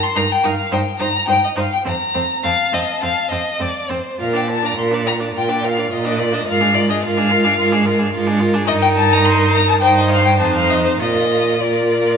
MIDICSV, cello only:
0, 0, Header, 1, 2, 480
1, 0, Start_track
1, 0, Key_signature, -2, "major"
1, 0, Tempo, 561272
1, 1097, Tempo, 581395
1, 1574, Time_signature, 4, 2, 24, 8
1, 4457, Tempo, 558659
1, 8297, Tempo, 601805
1, 10170, End_track
2, 0, Start_track
2, 0, Title_t, "Cello"
2, 0, Program_c, 0, 42
2, 135, Note_on_c, 0, 43, 98
2, 204, Note_off_c, 0, 43, 0
2, 375, Note_on_c, 0, 43, 85
2, 443, Note_off_c, 0, 43, 0
2, 619, Note_on_c, 0, 43, 95
2, 687, Note_off_c, 0, 43, 0
2, 856, Note_on_c, 0, 43, 81
2, 924, Note_off_c, 0, 43, 0
2, 1093, Note_on_c, 0, 43, 89
2, 1160, Note_off_c, 0, 43, 0
2, 1334, Note_on_c, 0, 43, 81
2, 1400, Note_off_c, 0, 43, 0
2, 1572, Note_on_c, 0, 41, 80
2, 1638, Note_off_c, 0, 41, 0
2, 1813, Note_on_c, 0, 41, 79
2, 1879, Note_off_c, 0, 41, 0
2, 2053, Note_on_c, 0, 41, 83
2, 2119, Note_off_c, 0, 41, 0
2, 2291, Note_on_c, 0, 41, 70
2, 2357, Note_off_c, 0, 41, 0
2, 2536, Note_on_c, 0, 41, 75
2, 2602, Note_off_c, 0, 41, 0
2, 2772, Note_on_c, 0, 41, 74
2, 2838, Note_off_c, 0, 41, 0
2, 3012, Note_on_c, 0, 41, 79
2, 3078, Note_off_c, 0, 41, 0
2, 3256, Note_on_c, 0, 41, 70
2, 3322, Note_off_c, 0, 41, 0
2, 3504, Note_on_c, 0, 46, 89
2, 3928, Note_off_c, 0, 46, 0
2, 3982, Note_on_c, 0, 46, 87
2, 4399, Note_off_c, 0, 46, 0
2, 4456, Note_on_c, 0, 46, 84
2, 4883, Note_off_c, 0, 46, 0
2, 4940, Note_on_c, 0, 46, 95
2, 5364, Note_off_c, 0, 46, 0
2, 5425, Note_on_c, 0, 44, 93
2, 5847, Note_off_c, 0, 44, 0
2, 5899, Note_on_c, 0, 44, 97
2, 6319, Note_off_c, 0, 44, 0
2, 6378, Note_on_c, 0, 44, 101
2, 6794, Note_off_c, 0, 44, 0
2, 6847, Note_on_c, 0, 44, 107
2, 7267, Note_off_c, 0, 44, 0
2, 7323, Note_on_c, 0, 43, 96
2, 8261, Note_off_c, 0, 43, 0
2, 8292, Note_on_c, 0, 43, 101
2, 8757, Note_on_c, 0, 41, 100
2, 8769, Note_off_c, 0, 43, 0
2, 9234, Note_off_c, 0, 41, 0
2, 9238, Note_on_c, 0, 46, 81
2, 10170, Note_off_c, 0, 46, 0
2, 10170, End_track
0, 0, End_of_file